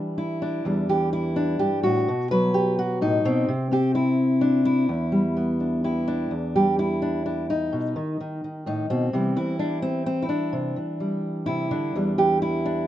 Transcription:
Already playing: E3 G3 D4
0.18 E4
0.42 D4
0.65 E2 E3 G3
0.89 E3 G4
1.13 E4
1.36 D4
1.59 G2 G4
1.83 A2 F#4
2.08 B2
2.31 F#3 B4
2.54 G4
2.79 F#4
3.01 A2 D#4
3.25 B2 C4
3.49 C3
3.71 C4 G4
3.95 E4
4.41 D4
4.65 E4
4.89 E2
5.12 G3
5.37 B3
5.60 D4
5.84 E4 G4
6.08 D4
6.31 E2
6.56 G3 G4
6.79 E4
7.02 D4
7.26 D4
7.50 D#4
7.73 B2
7.96 D#3
8.21 D#3
8.44 D#3
8.66 A2 D#4
8.90 B2 C4
9.13 C3 E3 G3
9.36 E3 E4
9.59 D4
9.82 C4
10.06 C4
10.22 E4
10.29 D4
10.53 C3
10.76 E3
11.00 G3
11.46 C3 E4
11.71 D3 D4
11.95 E2 E3 G3
12.18 E3 G4
12.42 E4
12.65 D4

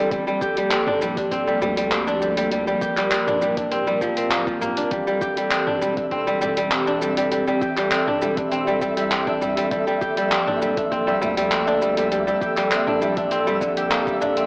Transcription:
Already playing: G3 C4 D4 G4 A4
0.11 G1 F3 G3 A#3, kick, open hi-hat, shaker
0.27 G3, shaker
0.41 G4, kick, shaker
0.57 G3, open hi-hat, shaker
0.71 C4, clap, open hi-hat, shaker
0.87 D4, mid tom
1.02 D1 G3, shaker
1.17 D4, kick, open hi-hat, shaker
1.31 C4, kick, open hi-hat, shaker
1.47 G3, shaker
1.62 D2 G3, mid tom, shaker
1.77 G3, open hi-hat, shaker
1.92 C4, clap, open hi-hat, shaker
2.07 D4, shaker
2.22 G3, shaker
2.37 G3, open hi-hat, shaker
2.51 G3 A#4, open hi-hat, shaker
2.67 G3, shaker
2.81 G4, kick, shaker
2.97 G3, clap, open hi-hat, shaker
3.11 C4, clap, open hi-hat, shaker
3.27 D4, mid tom, shaker
3.42 D1 G3, shaker
3.57 D4, kick, open hi-hat, shaker
3.71 C4, open hi-hat, shaker
3.87 G3, shaker
4.01 D1 F3, kick, shaker
4.17 D1 C4, open hi-hat, shaker
4.31 A#3, clap, open hi-hat, shaker
4.47 F3, kick, shaker
4.61 A#3, mid tom, shaker
4.77 D4, open hi-hat, shaker
4.91 A1 E3 G3 C4 A4 E5, kick, open hi-hat, shaker
5.07 G3, shaker
5.21 G4, kick, shaker
5.37 G3, open hi-hat, shaker
5.51 C4, clap, open hi-hat, shaker
5.67 D4, mid tom
5.81 E1 G3, shaker
5.97 D4, kick, open hi-hat, shaker
6.11 C4, kick, open hi-hat, shaker
6.27 G3, shaker
6.41 E1 G3, mid tom, shaker
6.57 G3, open hi-hat, shaker
6.71 C4, clap, open hi-hat, shaker
6.87 D4, shaker
7.02 G3, shaker
7.17 G3, open hi-hat, shaker
7.31 G3, open hi-hat, shaker
7.47 G3, shaker
7.61 G4, kick, shaker
7.77 G3, clap, open hi-hat, shaker
7.91 C4, clap, open hi-hat, shaker
8.07 D4, mid tom
8.21 E1 G3, shaker
8.37 D4, kick, open hi-hat, shaker
8.51 C4, open hi-hat, shaker
8.67 G3, shaker
8.81 C2 G3, kick, shaker
8.97 G3, open hi-hat, shaker
9.11 C4, clap, open hi-hat, shaker
9.27 D4, kick, shaker
9.41 G3, mid tom, shaker
9.57 G3, open hi-hat, shaker
9.71 G1 F3 G3 A#3 G4, kick, open hi-hat, shaker
9.87 G3, shaker
10.02 G4, kick, shaker
10.17 G3, open hi-hat, shaker
10.32 C4, clap, open hi-hat, shaker
10.47 D4, mid tom
10.61 D1 G3, shaker
10.77 D4, kick, open hi-hat, shaker
10.92 C4, kick, open hi-hat, shaker
11.07 G3, shaker
11.21 D2 G3, mid tom, shaker
11.37 G3, open hi-hat, shaker
11.51 C4, clap, open hi-hat, shaker
11.67 D4, shaker
11.82 G3, shaker
11.97 G3, open hi-hat, shaker
12.12 G3, open hi-hat, shaker
12.27 G3, shaker
12.41 G4, kick, shaker
12.57 G3, clap, open hi-hat, shaker
12.71 C4, clap, open hi-hat, shaker
12.87 D4, mid tom
13.01 D1 G3, shaker
13.17 D4, kick, open hi-hat, shaker
13.31 C4, open hi-hat, shaker
13.47 G3, shaker
13.61 A#1 D3, kick, shaker
13.77 G4, open hi-hat, shaker
13.91 A#3, clap, open hi-hat, shaker
14.07 G3, kick, shaker
14.21 D4, mid tom, shaker
14.37 C4, open hi-hat, shaker

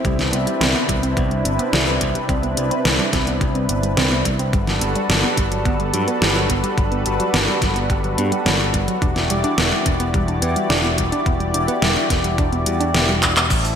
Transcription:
Already playing: C4 E4
0.05 C2 C3 G3 D4 B4, kick, closed hi-hat
0.19 C4, snare, closed hi-hat
0.33 C2 B3, closed hi-hat
0.47 G3, closed hi-hat
0.61 C2 C4, snare, closed hi-hat
0.75 B3, closed hi-hat
0.89 C2 G3, kick, closed hi-hat
1.03 C4, closed hi-hat
1.17 C2 B3, kick, closed hi-hat
1.31 G3, closed hi-hat
1.45 G1 C4, closed hi-hat
1.59 B3, closed hi-hat
1.73 C2 G3, snare, closed hi-hat
1.87 C4, closed hi-hat
2.01 C2 B3, kick, closed hi-hat
2.15 G3, closed hi-hat
2.29 C2 C4, kick, closed hi-hat
2.43 B3, closed hi-hat
2.57 C2 G3, closed hi-hat
2.71 C4, closed hi-hat
2.85 C2 B3, snare, closed hi-hat
2.99 G3, closed hi-hat
3.13 C2 C4, kick, snare, closed hi-hat
3.27 B3, closed hi-hat
3.41 C2 G3, kick, closed hi-hat
3.55 C4, closed hi-hat
3.69 G1 B3, closed hi-hat
3.83 G3, closed hi-hat
3.97 C2 C4, snare, closed hi-hat
4.11 B3, closed hi-hat
4.25 C2 G3, kick, closed hi-hat
4.39 C4, closed hi-hat
4.53 G1 G3 D4 F#4 A4 B4, kick, closed hi-hat
4.67 F#3, snare, closed hi-hat
4.81 G1 B3, closed hi-hat
4.95 G3, closed hi-hat
5.09 G1 F#3, snare, closed hi-hat
5.24 B3, closed hi-hat
5.37 G1 G3, kick, closed hi-hat
5.52 F#3, closed hi-hat
5.65 G1 B3, kick, closed hi-hat
5.80 G3, closed hi-hat
5.94 G2 F#3, closed hi-hat
6.08 B3, closed hi-hat
6.22 G1 G3, snare, closed hi-hat
6.35 F#3, closed hi-hat
6.50 G1 B3, kick, closed hi-hat
6.63 G3, closed hi-hat
6.77 G1 F#3, kick, closed hi-hat
6.92 B3, closed hi-hat
7.06 G1 G3, closed hi-hat
7.20 F#3, closed hi-hat
7.34 G1 B3, snare, closed hi-hat
7.48 G3, closed hi-hat
7.62 G1 F#3, kick, snare, closed hi-hat
7.76 B3, closed hi-hat
7.90 G1 G3, kick, closed hi-hat
8.04 F#3, closed hi-hat
8.18 G2 B3, closed hi-hat
8.32 G3, closed hi-hat
8.46 G1 F#3, snare, closed hi-hat
8.60 B3, closed hi-hat
8.74 G1 G3, kick, closed hi-hat
8.88 F#3, closed hi-hat
9.02 E1 E3 D4 E4 G4 D5, kick, closed hi-hat
9.16 B3, snare, closed hi-hat
9.30 E1 G3, closed hi-hat
9.44 D4, closed hi-hat
9.58 E1 B3, snare, closed hi-hat
9.72 G3, closed hi-hat
9.86 E1 D4, kick, closed hi-hat
10.00 B3, closed hi-hat
10.14 E1 G3, kick, closed hi-hat
10.28 D4, closed hi-hat
10.42 E2 B3, closed hi-hat
10.56 G3, closed hi-hat
10.70 E1 D4, snare, closed hi-hat
10.84 B3, closed hi-hat
10.98 E1 G3, kick, closed hi-hat
11.12 D4, closed hi-hat
11.26 E1 B3, kick, closed hi-hat
11.40 G3, closed hi-hat
11.54 E1 D4, closed hi-hat
11.68 B3, closed hi-hat
11.82 E1 G3, snare, closed hi-hat
11.96 D4, closed hi-hat
12.10 E1 B3, kick, snare, closed hi-hat
12.24 G3, closed hi-hat
12.38 E1 D4, kick, closed hi-hat
12.52 B3, closed hi-hat
12.66 E2 G3, closed hi-hat
12.80 D4, closed hi-hat
12.94 E1 B3, snare, closed hi-hat
13.09 G3, closed hi-hat
13.22 E1 D4, kick, clap, closed hi-hat
13.36 B3, clap, closed hi-hat
13.50 A1 C4 E4 A4, kick, closed hi-hat, crash, shaker
13.65 closed hi-hat, shaker

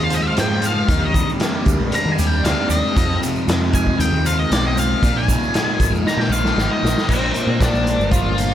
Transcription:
Already playing: F2 F3 G#3 C4 D#4 F4 G#4
0.00 D#2 F5
0.10 C5, closed hi-hat, shaker
0.15 D#5
0.22 E5
0.27 F5
0.36 G#2 F4 G5, snare, closed hi-hat, shaker
0.62 C5, closed hi-hat, shaker
0.66 F5
0.88 D#2 D#3 A#3 D4 G4, kick, closed hi-hat, shaker
1.02 D#2 D#5
1.14 G3, kick, closed hi-hat, shaker
1.29 shaker
1.40 A#3, snare, closed hi-hat, shaker
1.66 D2 G3, kick, closed hi-hat, shaker
1.80 A#1
1.92 D4 A#5, closed hi-hat, shaker
2.06 D#3
2.12 G#5
2.18 D#2 G4, closed hi-hat, shaker
2.27 G5
2.43 D2 D4 F5, snare, closed hi-hat, shaker
2.69 D#2 G4 D#5, closed hi-hat, shaker
2.96 F2 G#3 C4 D#4 F4, kick, closed hi-hat, shaker
3.21 C3, closed hi-hat, shaker
3.36 shaker
3.47 F2 G#3, snare, closed hi-hat, shaker
3.73 D#3 G#5, kick, closed hi-hat, shaker
3.87 kick
3.99 D#2 C4 G5, closed hi-hat, shaker
4.12 D#2
4.26 F4 F5, closed hi-hat, shaker
4.39 D#5
4.51 B1 C4 D5, snare, closed hi-hat, shaker
4.67 D#5
4.76 F4 F5, closed hi-hat, shaker
5.01 A#1 A#2 A#3, kick, closed hi-hat, shaker
5.13 A#1 G#5
5.27 D#3, kick, closed hi-hat, shaker
5.43 shaker
5.54 G#3, snare, closed hi-hat, shaker
5.79 G#1 D#3, kick, closed hi-hat, shaker
5.92 F2, shaker
6.05 D#4 A#5, snare, shaker
6.17 A#2 G5, snare
6.29 A#1 F4 F5, shaker
6.45 snare, shaker
6.56 G#1 D#4, snare, shaker
6.72 D#5
6.82 A#1 F4, snare
6.87 shaker
6.98 snare, shaker
7.08 A#1 A#2 F3 A#3 C4 D4 F4 A#4 C5, kick, crash, shaker
7.34 F3 A#3, closed hi-hat, shaker
7.47 A#2
7.60 A#2 F3 A#3 D4, kick, snare, closed hi-hat, shaker
7.73 A#1, shaker
7.87 closed hi-hat, shaker
7.98 G1, shaker
8.11 F4, kick, closed hi-hat, shaker
8.25 G1
8.36 F3 A#3, closed hi-hat, shaker

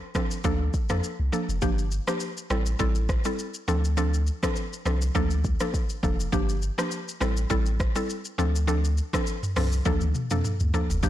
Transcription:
0.15 F3 C4 D4 A4, kick, cross-stick, shaker
0.31 shaker
0.44 D2 F3 A#3 D4 A4, kick, shaker
0.74 kick, shaker
0.89 F2 F3 A#3 D4 A4, cross-stick, shaker
1.04 shaker
1.20 C2
1.32 F3 A#3 D4 A4, shaker
1.49 F1, shaker
1.62 G1 F3 A#3 D4 G4, kick, shaker
1.78 shaker
1.91 shaker
2.07 F3 A#3 D4 G4, cross-stick, shaker
2.20 shaker
2.37 shaker
2.50 A1 G3 C4 E4 A4, cross-stick, shaker
2.66 shaker
2.79 A1 G3 C4 E4 A4, kick, shaker
2.95 shaker
3.09 kick, cross-stick, shaker
3.25 G3 C4 E4 A4, shaker
3.39 shaker
3.54 shaker
3.68 D2 F3 C4 D4 A4, shaker
3.85 shaker
3.97 F3 C4 D4 A4, shaker
4.14 shaker
4.27 shaker
4.43 F3 C4 D4 A4, kick, cross-stick, shaker
4.56 shaker
4.73 shaker
4.85 C2 F3 C4 D4 A4, cross-stick, shaker
5.02 shaker
5.15 D2 F3 A#3 D4 A4, kick, shaker
5.31 shaker
5.44 kick, shaker
5.60 F3 A#3 D4 A4, cross-stick, shaker
5.74 kick, shaker
5.90 shaker
6.03 F1 F3 A#3 D4 A4, kick, shaker
6.20 shaker
6.32 G1 F3 A#3 D4 G4, kick, shaker
6.49 shaker
6.62 shaker
6.78 F3 A#3 D4 G4, cross-stick, shaker
6.91 shaker
7.08 shaker
7.21 A1 G3 C4 E4 A4, cross-stick, shaker
7.37 shaker
7.50 A1 G3 C4 E4 A4, kick, shaker
7.66 shaker
7.80 kick, cross-stick, shaker
7.96 G3 C4 E4 A4, shaker
8.10 shaker
8.25 shaker
8.38 D2 F3 C4 D4 A4, shaker
8.56 shaker
8.67 F3 C4 D4 A4, shaker
8.85 shaker
8.97 shaker
9.13 F3 C4 D4 A4, kick, cross-stick, shaker
9.27 shaker
9.43 mid tom, shaker
9.56 C2 F3 C4 D4 A4, cross-stick, mid tom, open hi-hat, shaker
9.72 shaker
9.85 D2 F3 A#3 D4 A4, kick, high tom, shaker
10.01 D2, high tom, shaker
10.15 mid tom, shaker
10.31 F2 F3 A#3 D4 A4, mid tom, shaker
10.44 mid tom, shaker
10.60 D2, mid tom, shaker
10.74 F3 A#3 D4 A4, floor tom, shaker
10.90 F1, floor tom, shaker
11.03 G1 F3 A#3 D4 G4, kick, shaker

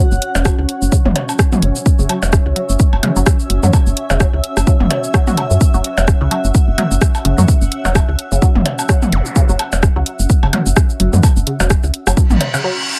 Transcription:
Already playing: C#4 F#4 C#5 F#5
0.12 F#1, shaker
0.22 closed hi-hat
0.35 E1, percussion blips, shaker
0.45 F#3, kick, cross-stick, percussion blips, shaker
0.59 C#2
0.69 closed hi-hat
0.81 F#1 E5, shaker
0.92 C#3, kick, shaker
1.05 F#1 F#3, mid tom
1.16 closed hi-hat, percussion blips
1.29 percussion blips, shaker
1.39 kick, cross-stick, shaker
1.52 F#3, mid tom, shaker
1.62 F#1, closed hi-hat
1.76 shaker
1.86 kick, shaker
1.99 F#1 C#3, shaker
2.09 F#3, closed hi-hat, percussion blips
2.23 E1, percussion blips, shaker
2.33 kick, cross-stick, shaker
2.46 C#2
2.56 F#3, closed hi-hat
2.69 F#1, shaker
2.80 kick, shaker
2.93 F#1, percussion blips
3.03 C#3, closed hi-hat, mid tom, percussion blips
3.16 F#1 F#3, shaker
3.26 kick, cross-stick, shaker
3.40 shaker
3.50 F#1, closed hi-hat
3.63 F#2 F#3, mid tom, shaker
3.73 kick, percussion blips, shaker
3.87 F#1, shaker
3.97 closed hi-hat
4.10 E1 C#3, percussion blips, shaker
4.20 F#3, kick, cross-stick, shaker
4.34 C#2
4.44 closed hi-hat
4.57 F#1, cross-stick, percussion blips, shaker
4.67 F#3, kick, shaker
4.80 F#1, mid tom
4.90 F#3, closed hi-hat, percussion blips
5.04 shaker
5.14 F#3, kick, cross-stick, shaker
5.27 F#4, mid tom, shaker
5.37 F#3, closed hi-hat, percussion blips
5.51 F#2, shaker
5.61 F#5, kick, shaker
5.74 F#1 F#3, shaker
5.84 closed hi-hat
5.98 E1, percussion blips, shaker
6.08 kick, cross-stick, shaker
6.21 C#2 C#3
6.31 F#3, closed hi-hat, percussion blips
6.44 F#1, shaker
6.55 kick, shaker
6.68 F#1
6.78 F#3, closed hi-hat, mid tom, percussion blips
6.91 F#1, shaker
7.02 kick, cross-stick, shaker
7.15 percussion blips, shaker
7.25 F#1 C#3, closed hi-hat
7.38 F#2 F#3, mid tom, shaker
7.48 kick, shaker
7.62 F#1, shaker
7.72 closed hi-hat
7.85 E1 F#3, percussion blips, shaker
7.95 kick, cross-stick, percussion blips, shaker
8.08 C#2
8.19 closed hi-hat
8.32 F#1 C#3, shaker
8.42 F#3, kick, shaker
8.55 F#1, mid tom
8.66 closed hi-hat, percussion blips
8.79 percussion blips, shaker
8.89 F#3, kick, cross-stick, shaker
9.02 mid tom, shaker
9.12 F#1, closed hi-hat, zap
9.26 shaker
9.36 C#3, kick, shaker
9.49 F#1 F#3, shaker
9.59 closed hi-hat, percussion blips
9.72 E1, percussion blips, shaker
9.83 kick, cross-stick, shaker
9.96 C#2 F#3
10.06 closed hi-hat
10.19 F#1, shaker
10.30 kick, shaker
10.43 F#1 C#3, percussion blips
10.53 F#3, closed hi-hat, mid tom, percussion blips
10.66 F#1, shaker
10.76 kick, cross-stick, shaker
10.90 shaker
11.00 F#1 F#3, closed hi-hat
11.13 F#2, mid tom, shaker
11.23 kick, percussion blips, shaker
11.37 F#1, shaker
11.47 C#3, closed hi-hat
11.60 E1 F#3, percussion blips, shaker
11.70 kick, cross-stick, shaker
11.84 C#2, shaker
11.94 closed hi-hat
12.07 F#1 F#3, cross-stick, percussion blips, shaker
12.17 kick, reverse cymbal, shaker
12.30 A1, mid tom, shaker
12.41 closed hi-hat, percussion blips
12.54 C#3, percussion blips, shaker
12.64 F#3

